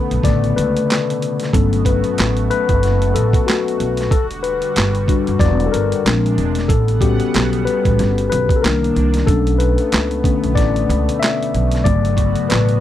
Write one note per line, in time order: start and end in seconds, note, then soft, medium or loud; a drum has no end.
0.00 4.07 B2 medium
0.00 0.24 D3 medium
0.00 0.25 A3 soft
0.00 1.50 A3 medium
0.00 1.50 B3 medium
0.00 1.55 C#4 medium
0.00 1.53 A4 medium
0.00 0.20 B4 medium
0.11 0.23 B1 medium
0.11 closed hi-hat soft
0.23 0.54 A1 medium
0.23 0.54 C#3 medium
0.23 0.53 D3 medium
0.23 0.54 A3 soft
0.23 0.39 D5 medium
0.23 kick medium
0.23 snare soft
0.23 closed hi-hat medium
0.44 closed hi-hat soft
0.56 0.74 C#2 medium
0.56 1.56 B4 medium
0.56 closed hi-hat medium
0.77 closed hi-hat medium
0.90 snare loud
0.90 clap medium
0.90 closed hi-hat medium
1.10 closed hi-hat soft
1.22 closed hi-hat medium
1.40 snare soft
1.40 closed hi-hat medium
1.53 2.01 G1 loud
1.53 2.46 F#3 medium
1.53 4.09 A3 medium
1.53 2.46 A3 medium
1.53 4.09 B3 medium
1.53 2.46 B3 soft
1.53 2.47 C#4 medium
1.53 6.01 F#4 medium
1.53 1.86 A4 medium
1.53 kick loud
1.53 closed hi-hat medium
1.73 closed hi-hat medium
1.85 2.46 B4 medium
1.85 kick medium
1.85 closed hi-hat medium
2.04 closed hi-hat soft
2.18 2.48 A1 medium
2.18 snare loud
2.18 clap medium
2.18 closed hi-hat medium
2.37 closed hi-hat soft
2.50 3.17 B4 loud
2.50 closed hi-hat medium
2.69 2.83 G1 medium
2.69 kick medium
2.69 closed hi-hat soft
2.83 3.12 F#1 medium
2.83 snare soft
2.83 closed hi-hat medium
3.02 closed hi-hat soft
3.15 3.32 A1 medium
3.15 3.29 A4 medium
3.15 closed hi-hat medium
3.33 kick loud
3.33 closed hi-hat medium
3.47 3.94 F#4 medium
3.47 snare loud
3.47 clap medium
3.47 closed hi-hat medium
3.68 closed hi-hat soft
3.80 4.12 B1 medium
3.80 closed hi-hat medium
3.97 snare soft
3.97 closed hi-hat medium
4.11 4.58 E1 loud
4.11 6.03 D3 medium
4.11 6.03 G3 medium
4.11 4.26 A4 medium
4.11 kick loud
4.11 closed hi-hat medium
4.31 closed hi-hat medium
4.43 5.36 B4 medium
4.43 closed hi-hat medium
4.62 closed hi-hat soft
4.76 5.06 G1 loud
4.76 snare loud
4.76 clap medium
4.76 closed hi-hat medium
4.95 closed hi-hat soft
5.08 6.01 G3 medium
5.08 6.01 D4 medium
5.08 6.01 F#4 medium
5.08 kick medium
5.08 closed hi-hat medium
5.27 5.39 F#1 medium
5.27 closed hi-hat medium
5.39 5.70 E1 loud
5.39 5.52 D5 loud
5.39 kick medium
5.39 snare soft
5.39 closed hi-hat medium
5.60 closed hi-hat soft
5.66 5.72 A4 medium
5.72 5.90 G1 medium
5.72 6.72 A#4 medium
5.72 closed hi-hat medium
5.92 closed hi-hat medium
6.04 6.35 A#1 loud
6.04 6.68 C3 medium
6.04 6.68 G#3 medium
6.04 6.66 G#3 medium
6.04 6.66 C4 soft
6.04 6.68 D4 medium
6.04 6.67 D4 medium
6.04 snare loud
6.04 clap medium
6.04 closed hi-hat medium
6.26 closed hi-hat soft
6.38 6.67 E1 loud
6.38 closed hi-hat medium
6.55 snare soft
6.55 closed hi-hat medium
6.68 7.16 A1 loud
6.68 8.60 C#3 medium
6.68 8.60 G3 medium
6.68 8.60 B3 medium
6.68 6.99 A4 medium
6.68 8.60 F#5 medium
6.68 kick loud
6.68 closed hi-hat medium
6.88 closed hi-hat medium
7.01 8.59 G3 medium
7.01 8.59 B3 soft
7.01 8.59 C#4 soft
7.01 8.59 F#4 medium
7.01 7.68 G4 medium
7.01 kick medium
7.01 closed hi-hat medium
7.20 closed hi-hat soft
7.34 7.64 B1 medium
7.34 snare loud
7.34 clap medium
7.34 closed hi-hat medium
7.53 closed hi-hat soft
7.65 8.26 B4 loud
7.65 closed hi-hat medium
7.85 7.98 A1 medium
7.85 kick medium
7.85 closed hi-hat soft
7.99 8.28 G1 loud
7.99 snare soft
7.99 closed hi-hat medium
8.18 closed hi-hat soft
8.30 8.48 B1 medium
8.30 8.57 B4 medium
8.30 closed hi-hat medium
8.49 kick loud
8.49 closed hi-hat medium
8.56 8.62 A4 medium
8.62 8.93 C2 medium
8.62 9.27 D#3 medium
8.62 9.08 D#3 medium
8.62 9.27 A#3 medium
8.62 9.08 A#3 soft
8.62 9.27 D4 medium
8.62 9.08 D4 medium
8.62 9.10 A#4 medium
8.62 snare loud
8.62 clap medium
8.62 closed hi-hat medium
8.84 closed hi-hat soft
8.96 9.25 C2 medium
8.96 closed hi-hat medium
9.14 snare soft
9.14 closed hi-hat medium
9.27 9.75 B1 loud
9.27 12.80 B2 medium
9.27 12.80 A3 medium
9.27 10.20 A3 soft
9.27 11.83 B3 medium
9.27 10.21 C#4 medium
9.27 10.20 D4 medium
9.27 9.60 A4 loud
9.27 kick loud
9.27 closed hi-hat medium
9.47 closed hi-hat medium
9.59 10.59 B4 medium
9.59 closed hi-hat medium
9.78 closed hi-hat soft
9.92 10.22 C#2 medium
9.92 snare loud
9.92 clap medium
9.92 closed hi-hat medium
10.11 closed hi-hat soft
10.24 10.53 D3 soft
10.24 10.53 A3 soft
10.24 10.53 C#4 medium
10.24 kick medium
10.24 closed hi-hat medium
10.44 10.56 B1 medium
10.44 closed hi-hat soft
10.55 10.86 A1 medium
10.55 11.22 D5 loud
10.55 kick medium
10.55 closed hi-hat medium
10.60 snare soft
10.76 closed hi-hat soft
10.89 11.06 C#2 loud
10.89 closed hi-hat medium
11.09 closed hi-hat medium
11.20 11.81 E5 loud
11.20 clap medium
11.20 closed hi-hat medium
11.24 snare loud
11.43 closed hi-hat soft
11.54 11.83 B1 medium
11.54 closed hi-hat medium
11.71 snare soft
11.71 closed hi-hat medium
11.84 12.33 G1 loud
11.84 12.79 C#3 medium
11.84 12.78 F#3 medium
11.84 12.78 A3 medium
11.84 12.80 B3 medium
11.84 12.78 B3 medium
11.84 12.80 F#4 medium
11.84 12.51 D5 loud
11.84 kick loud
11.84 closed hi-hat medium
12.05 closed hi-hat medium
12.17 kick medium
12.17 closed hi-hat medium
12.36 closed hi-hat soft
12.49 12.80 A1 medium
12.49 12.80 B4 medium
12.49 snare loud
12.49 clap medium
12.49 closed hi-hat medium
12.69 closed hi-hat soft